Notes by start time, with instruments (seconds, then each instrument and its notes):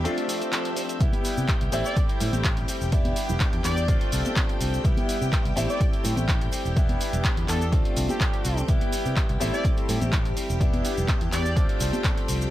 Already playing: string machine G4 E5
0.04 clean electric guitar F3 C4 D4 A4, grand piano A3 C4 D4 F4, closed hi-hat, swell, shaker
0.16 clean electric guitar C4 D4 A4, closed hi-hat
0.28 clean electric guitar F3 C4 D4 A4, open hi-hat, shaker
0.40 clean electric guitar C4 D4 A4, closed hi-hat, shaker
0.52 clean electric guitar F3 C4 D4 A4, clap, closed hi-hat, shaker
0.65 closed hi-hat
0.76 clean electric guitar F3 C4 D4 A4, open hi-hat, shaker
0.89 closed hi-hat, shaker
1.00 fingered electric bass C2, grand piano G3 B3 E4, clean electric guitar G3 B3 E4 G4, string machine G4 G5, kick, closed hi-hat, shaker
1.13 closed hi-hat, high conga, shaker
1.24 clean electric guitar G3 B3 E4 G4, open hi-hat, shaker
1.37 fingered electric bass C3, shaker
1.48 clean electric guitar G3 B3 E4 G4, kick, clap, closed hi-hat, shaker
1.61 fingered electric bass C2, closed hi-hat, shaker
1.72 fingered electric bass A1, clean electric guitar G3 C4 E4 G4, grand piano G3 A3 C4 E4, open hi-hat, high conga, shaker
1.84 clean electric guitar C4 E4 G4, analog polysynth D5, shaker
1.96 kick, closed hi-hat, shaker
2.09 clean electric guitar C4 E4 G4, closed hi-hat, shaker
2.20 fingered electric bass A2, clean electric guitar G3 C4 E4 G4, open hi-hat, low conga, shaker
2.32 fingered electric bass A1, clean electric guitar C4 E4 G4, closed hi-hat, high conga, shaker
2.44 clean electric guitar G3 C4 E4 G4, kick, clap, closed hi-hat, shaker
2.57 closed hi-hat, shaker
2.68 clean electric guitar G3 C4 E4 G4, open hi-hat, shaker
2.81 fingered electric bass E1, shaker
2.92 grand piano G3 B3 D4 E4, clean electric guitar B3 D4 G4, kick, closed hi-hat, shaker
3.05 closed hi-hat, high conga, shaker
3.16 clean electric guitar B3 D4 G4, open hi-hat, shaker
3.29 fingered electric bass E1, low conga, shaker
3.40 clean electric guitar B3 D4 G4, kick, clap, closed hi-hat, shaker
3.53 fingered electric bass E2, closed hi-hat, shaker
3.63 fingered electric bass E2, clean electric guitar B3 D4 G4, analog polysynth D5, clap, open hi-hat, high conga, shaker
3.76 clean electric guitar D4 G4, shaker
3.88 fingered electric bass D2, clean electric guitar F3 C4 D4 A4, grand piano A3 C4 D4 F4, kick, closed hi-hat, shaker
4.01 clean electric guitar C4 D4 A4, closed hi-hat, shaker
4.12 fingered electric bass C2, clean electric guitar F3 C4 D4 A4, open hi-hat, shaker
4.25 clean electric guitar C4 D4 A4, closed hi-hat, high conga, shaker
4.36 clean electric guitar F3 C4 D4 A4, kick, clap, closed hi-hat, shaker
4.49 closed hi-hat, shaker
4.60 fingered electric bass C2, clean electric guitar F3 C4 D4 A4, open hi-hat, shaker
4.74 shaker
4.84 fingered electric bass C2, clean electric guitar G3 B3 E4 G4, grand piano G3 B3 E4, kick, closed hi-hat, shaker
4.97 closed hi-hat, high conga, shaker
5.08 clean electric guitar G3 B3 E4 G4, open hi-hat, shaker
5.21 fingered electric bass C3, shaker
5.32 clean electric guitar G3 B3 E4 G4, kick, clap, closed hi-hat, shaker
5.45 fingered electric bass C2, closed hi-hat, shaker
5.56 fingered electric bass A1, grand piano G3 A3 C4 E4, clean electric guitar C4 E4 G4, open hi-hat, high conga, shaker
5.68 clean electric guitar E4 G4, analog polysynth D5, shaker
5.80 kick, closed hi-hat, shaker
5.93 clean electric guitar E4 G4, closed hi-hat, shaker
6.04 fingered electric bass A2, clean electric guitar C4 E4 G4, open hi-hat, low conga, shaker
6.16 fingered electric bass A1, clean electric guitar E4 G4, high conga, shaker
6.28 clean electric guitar C4 E4 G4, kick, clap, closed hi-hat, shaker
6.41 closed hi-hat, shaker
6.52 clean electric guitar C4 E4 G4, muted fingered electric bass stroke, open hi-hat, shaker
6.65 fingered electric bass E1, shaker
6.76 grand piano G3 B3 D4 E4, clean electric guitar B3 D4 G4, kick, closed hi-hat, shaker
6.89 closed hi-hat, high conga, shaker
7.00 clean electric guitar B3 D4 G4, open hi-hat, shaker
7.13 fingered electric bass E1, closed hi-hat, low conga, shaker
7.24 clean electric guitar B3 D4 G4, kick, clap, closed hi-hat, shaker
7.37 fingered electric bass E2, closed hi-hat, shaker
7.48 fingered electric bass E2, clean electric guitar B3 D4 G4, analog polysynth A4, clap, open hi-hat, high conga, shaker
7.61 clean electric guitar D4 G4, shaker
7.72 fingered electric bass D2, clean electric guitar F3 C4 D4 A4, grand piano A3 C4 D4 F4, kick, closed hi-hat, shaker
7.85 clean electric guitar C4 D4 A4, closed hi-hat, shaker
7.96 fingered electric bass C2, clean electric guitar F3 C4 D4 A4, open hi-hat, shaker
8.09 clean electric guitar C4 D4 A4, analog polysynth G4, closed hi-hat, high conga, shaker
8.20 clean electric guitar F3 C4 D4 A4, kick, clap, closed hi-hat, shaker
8.34 closed hi-hat, shaker
8.44 fingered electric bass C2, clean electric guitar F3 C4 D4 A4, open hi-hat, shaker
8.57 closed hi-hat, shaker
8.68 fingered electric bass C2, grand piano G3 B3 E4, clean electric guitar G3 B3 E4 G4, string machine G4 G5, kick, closed hi-hat, shaker
8.81 closed hi-hat, high conga, shaker
8.92 clean electric guitar G3 B3 E4 G4, open hi-hat, shaker
9.05 fingered electric bass C3, shaker
9.16 clean electric guitar G3 B3 E4 G4, kick, clap, closed hi-hat, shaker
9.29 fingered electric bass C2, closed hi-hat, shaker
9.40 fingered electric bass A1, grand piano G3 A3 C4 E4, clean electric guitar G3 C4 E4 G4, open hi-hat, high conga, shaker
9.53 clean electric guitar C4 E4 G4, analog polysynth D5, shaker
9.64 kick, closed hi-hat, shaker
9.77 clean electric guitar C4 E4 G4, closed hi-hat, shaker
9.88 fingered electric bass A2, clean electric guitar G3 C4 E4 G4, open hi-hat, low conga, shaker
10.01 fingered electric bass A1, clean electric guitar C4 E4 G4, closed hi-hat, high conga, shaker
10.12 clean electric guitar G3 C4 E4, kick, clap, closed hi-hat, shaker
10.25 closed hi-hat, shaker
10.36 clean electric guitar G3 C4 E4 G4, open hi-hat, shaker
10.49 fingered electric bass E1, shaker
10.60 grand piano G3 B3 D4 E4, clean electric guitar B3 D4 G4, kick, closed hi-hat, shaker
10.73 closed hi-hat, high conga, shaker
10.84 clean electric guitar B3 D4 G4, open hi-hat, shaker
10.97 fingered electric bass E1, low conga, shaker
11.08 clean electric guitar B3 D4 G4, kick, clap, closed hi-hat, shaker
11.21 fingered electric bass E2, closed hi-hat, shaker
11.32 fingered electric bass E2, clean electric guitar B3 D4 G4, analog polysynth D5, clap, open hi-hat, high conga, shaker
11.44 clean electric guitar D4 G4, shaker
11.56 fingered electric bass D2, clean electric guitar F3 C4 D4 A4, grand piano A3 C4 D4 F4, kick, closed hi-hat, shaker
11.69 clean electric guitar C4 D4 A4, closed hi-hat, shaker
11.80 fingered electric bass C2, clean electric guitar F3 C4 D4 A4, open hi-hat, shaker
11.92 clean electric guitar C4 D4 A4, closed hi-hat, high conga, shaker
12.04 clean electric guitar F3 C4 D4 A4, kick, clap, closed hi-hat, shaker
12.18 closed hi-hat, shaker
12.28 fingered electric bass C2, clean electric guitar F3 C4 D4 A4, open hi-hat, shaker
12.41 shaker